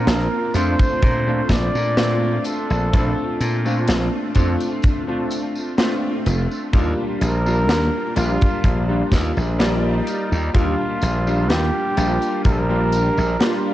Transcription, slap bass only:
0.07 A#1
0.55 F2
1.03 A#2
1.49 A#1
1.75 A#2
2.70 A#1
2.93 A#1
3.40 A#2
3.88 A#1
4.36 F2
6.26 F1
6.73 D#2
7.21 A#1
7.69 D#2
8.17 A#1
8.64 A#1
9.12 D#2
9.37 A#1
10.32 D#2
10.54 D#2
11.02 A#1
11.50 D#2
11.97 A#1
12.45 A#1
13.18 A#1

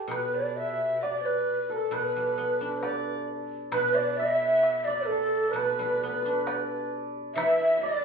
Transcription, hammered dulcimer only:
Already playing: G4 A4
0.10 B4
1.04 D5
1.70 A4
1.92 B4
2.84 D5
3.73 B4
3.96 D5
4.19 E5
4.87 D5
5.11 A4
5.55 B4
5.63 B4
5.70 B4
5.79 B4
5.86 B4
5.95 B4
6.01 B4
6.09 B4
6.14 B4
6.22 B4
6.29 B4
6.46 D5
7.36 E5
7.76 E5
7.83 D5

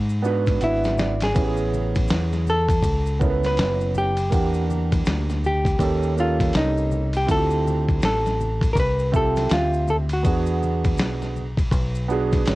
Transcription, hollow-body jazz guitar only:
0.64 E4
1.23 G#4
2.50 A4
3.46 B4
3.98 G4
5.46 G4
6.20 F4
6.57 D#4
7.17 G4
7.31 A4
8.05 A4
8.73 A#4
8.80 B4
9.16 A4
9.53 F4
9.90 A4
10.13 F#4

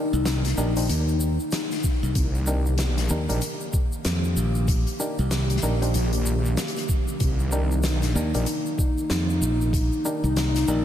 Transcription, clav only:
Already playing: D4 D#4 G4 A#4
0.58 D4 D#4 G4 A#4
0.77 D4 D#4 G4 C5
2.47 D4 D#4 G4 A#4
3.10 D4 D#4 G4 A#4
3.29 D4 D#4 G4 A#4
5.00 D4 D#4 G4 A#4
5.63 D4 D#4 G4 A#4
5.82 D4 D#4 G4 C5
7.52 D4 D#4 G4 A#4
8.15 D4 D#4 G4 A#4
8.35 D4 D#4 G4 A#4
10.05 D4 D#4 G4 A#4
10.68 D4 D#4 G4 A#4

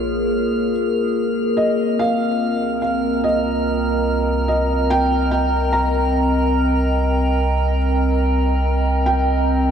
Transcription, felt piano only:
Already playing: C#5
1.57 D#5
1.99 F5
2.82 F5
3.24 D#5
4.48 D#5
4.90 G5
5.31 G5
5.73 A#5
9.06 G5

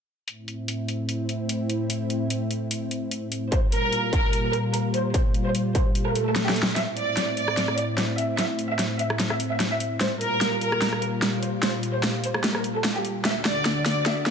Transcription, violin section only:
3.52 C5
3.72 A#4
4.13 A#4
4.53 A#4
4.74 A#4
4.94 C5
5.14 C5
5.45 C5
5.75 C5
6.06 A#4
6.26 A4
6.47 G4
6.76 E5
6.97 D5
7.37 D5
7.78 D5
7.98 D5
8.18 E5
8.38 E5
8.70 E5
8.99 E5
9.30 E5
9.51 E5
9.71 E5
10.01 C5
10.21 A#4
10.61 A#4
11.02 A#4
11.22 A#4
11.43 C5
11.63 C5
11.94 C5
12.24 C5
12.55 A#4
12.75 A4
12.95 G4
13.25 E5
13.45 D5
13.86 D5
14.06 E5
14.26 D5

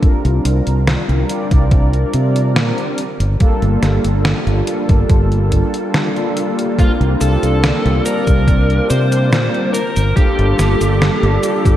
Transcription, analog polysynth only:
0.01 G3 C4 D4 F4 A#4
1.28 G3 C4 D4 F4 D5
3.39 G3 A#3 D4 F4 A4
4.66 G3 A#3 D4 F4 A4
6.77 G3 A#3 C4 D4 F4
8.04 G3 C4 D4 F4 D5
10.15 G3 A#3 D4 F4 A4
11.42 G3 A#3 D4 F4 A4

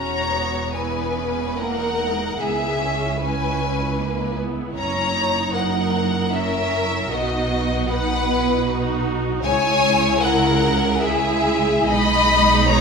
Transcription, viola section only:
Already playing: C#4 F#4
0.32 B3
0.75 E4
1.17 C#4
1.58 A#3 D#4
2.00 G#3
2.40 B3 E4
2.80 C#4
3.21 C#4 E4
4.00 A#3
4.38 B3
4.77 C#4
5.15 D#4
6.34 C#4
7.11 B3 D#4
7.88 D#4
8.26 E4
8.64 D#4 F#4
9.44 G#3 E4
11.01 G#3 E4
11.88 G#3 D#4

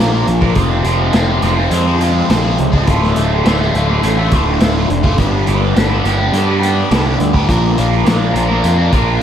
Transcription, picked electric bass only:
0.00 A#1
0.27 A#1
0.56 F1
0.85 F1
1.14 F1
1.43 F1
1.71 F2
2.30 A#1
2.59 C#2
2.88 D1
3.17 D1
3.45 D1
3.74 D1
4.03 A1
4.33 D1
4.61 D1
4.90 F1
5.19 G1
5.48 G1
5.76 G1
6.04 G1
6.33 G2
6.91 C2
7.20 D2
7.49 A#1
7.78 A#1
8.07 A#1
8.34 A#1
8.64 F2
8.93 A#1

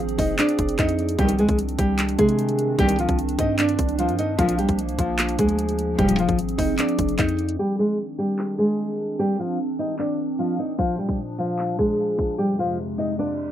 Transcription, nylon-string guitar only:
0.18 D#4 D#5
0.39 D4 D5
0.78 D#4 D#5
1.19 G3 G4
1.39 G#3 G#4
1.78 G3 G4
2.18 G#3 G#4
2.79 G3 G4
2.99 F3 F4
3.39 D#4 D#5
3.59 D4 D5
3.99 F3 F4
4.19 D#4 D#5
4.38 F3 F4
4.58 G3 G4
4.98 F3 F4
5.39 G#3 G#4
5.98 G3 G4
6.19 F3 F4
6.58 D#4 D#5
6.79 D4 D5
7.18 D#4 D#5
7.59 G3 G4
7.79 G#3 G#4
8.18 G3 G4
8.58 G#3 G#4
9.19 G3 G4
9.39 F3 F4
9.79 D#4 D#5
9.99 D4 D5
10.39 F3 F4
10.59 D#4 D#5
10.78 F3 F4
10.98 G3 G4
11.38 F3 F4
11.79 G#3 G#4
12.38 G3 G4
12.59 F3 F4
12.98 D#4 D#5
13.19 D4 D5

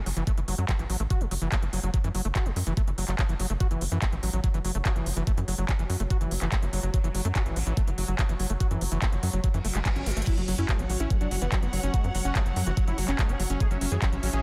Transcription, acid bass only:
0.06 F#3
0.17 E3
0.27 A3
0.37 E3
0.48 F#3
0.58 F#3
0.69 F#3
0.79 E3
0.90 F#3
1.00 A3
1.10 F#4
1.21 F#3
1.31 F#3
1.42 E3
1.52 A3
1.62 E3
1.73 F#3
1.83 F#3
1.94 F#3
2.04 E3
2.15 F#3
2.25 A3
2.35 F#4
2.46 F#3
2.56 F#3
2.67 E3
2.77 A3
2.87 E3
2.98 F#3
3.08 F#3
3.19 F#3
3.29 E3
3.40 F#3
3.50 A3
3.60 F#4
3.71 E3
3.81 F#3
3.92 E3
4.02 A3
4.13 E3
4.23 F#3
4.33 F#3
4.44 F#3
4.54 E3
4.65 F#3
4.75 A3
4.85 F#4
4.96 E3
5.06 F#3
5.17 E3
5.27 A3
5.37 E3
5.48 F#3
5.58 F#3
5.79 E3
5.90 F#3
6.00 A3
6.10 F#4
6.21 E3
6.31 F#3
6.42 E3
6.52 A3
6.63 E3
6.73 F#3
6.83 F#3
6.94 F#3
7.04 E3
7.15 F#3
7.25 A3
7.35 F#4
7.46 E3
7.56 F#3
7.67 E3
7.77 A3
7.87 E3
7.98 F#3
8.08 F#3
8.19 F#3
8.29 E3
8.40 F#3
8.50 A3
8.60 F#4
8.71 E3
8.81 F#3
8.92 E3
9.02 A3
9.12 E3
9.23 F#3
9.33 F#3
9.44 F#3
9.54 E3
9.65 A3
9.75 G#3
9.85 G#3
9.96 C#4
10.06 F#3
10.17 A3
10.27 F#3
10.37 F#3
10.48 F#3
10.58 C#4
10.69 G#3
10.79 C#4
10.90 F#3
11.00 C#4
11.10 G#3
11.21 F#3
11.31 F#3
11.42 E3
11.52 F#3
11.63 F#3
11.73 F#3
11.83 C#4
11.94 G#3
12.04 C#4
12.15 F#3
12.25 C#4
12.35 G#3
12.46 F#3
12.56 F#3
12.67 E3
12.77 F#3
12.88 F#3
12.98 F#3
13.08 C#4
13.19 G#3
13.29 C#4
13.40 F#3
13.50 C#4
13.60 G#3
13.71 F#3
13.81 F#3
13.92 E3
14.02 F#3
14.12 F#3
14.23 F#3
14.33 C#4

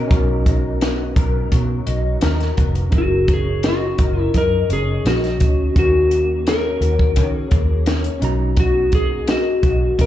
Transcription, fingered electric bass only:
0.11 B1
1.16 B1
1.52 B2
1.87 B1
2.22 D#2
2.58 F1
2.92 F#1
3.98 F#1
4.35 F#2
4.69 F#1
5.05 A#1
5.41 D2
5.76 D#2
6.81 D#2
7.17 D#3
7.52 D#2
8.22 B1
9.63 B1
9.98 B2

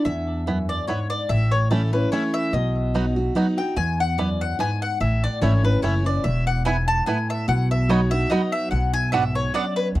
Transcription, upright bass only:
0.05 E2
1.29 A1
2.53 B1
3.77 E2
5.01 A1
5.42 G#1
5.83 F#1
6.25 E1
7.48 B1
8.72 B1
9.95 E2

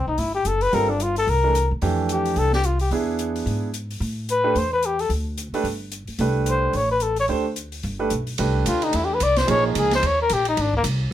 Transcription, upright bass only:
0.07 B1
0.18 G1
0.45 F#1
0.73 G1
1.27 C2
1.71 E2
1.82 F2
2.36 C2
2.91 E2
3.46 G#2
4.00 A2
4.55 E2
5.09 D2
5.52 muted upright bass stroke
5.64 G1
6.08 muted upright bass stroke
6.19 C2
6.73 A1
7.29 D2
7.84 G1
8.11 B1
8.39 C2
8.65 D2
8.94 E2
9.21 C2
9.48 A#1
9.75 C#2
10.02 D#2
10.30 A#1
10.57 G#1
10.84 C2

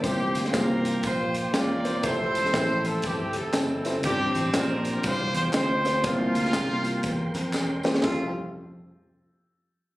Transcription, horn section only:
0.05 A#3 G4
0.54 F4 G4 A#4
1.05 F4 G4 C5
1.37 C5
1.54 F4 A#4 D5
2.04 E4 A4 C5
2.86 A4
3.05 C4 E4 G4
3.36 C4 E4 A4
4.05 C4 D4 G4
4.54 D4 F4 A#4
5.06 F4 C5
5.34 C5
5.54 F4 C5
6.04 A#3 F4
8.03 F4

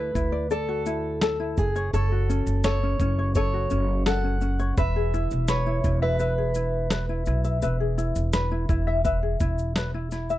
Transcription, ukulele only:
Already playing: E4 F#4 A4 D5
0.15 E4
0.32 D5
0.51 A4 D5
0.69 F#4
0.86 E4
1.22 A4
1.40 E4
1.76 C#5
1.94 A4 C#5
2.12 F#4
2.29 C#4
2.65 A4
2.83 C#4
3.01 C#4
3.19 C#5
3.36 A4 C#5
3.53 F#4
3.71 C#4
4.06 A4
4.24 C#4
4.41 C#4
4.59 C#5
4.78 B4 E5
4.96 G#4
5.14 E4
5.49 B4
5.67 E4
5.84 E4
6.02 E5
6.19 B4 E5
6.38 G#4
6.55 E4
6.91 B4
7.09 E4
7.27 E4
7.44 E5
7.62 B4 E5
7.80 G#4
7.98 E4
8.33 B4
8.51 E4
8.69 E4
8.87 E5
9.04 B4 E5
9.23 G#4
9.41 E4
9.76 B4
9.94 E4
10.12 E4
10.30 E5

